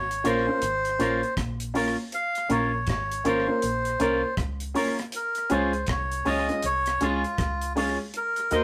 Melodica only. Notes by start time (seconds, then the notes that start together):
Already playing: C#5
0.27 C5
2.14 F5
2.52 C#5
2.89 C#5
3.27 C5
5.16 A#4
5.52 C5
5.90 C#5
6.28 D#5
6.65 C#5
7.03 F4
8.17 A#4
8.55 C5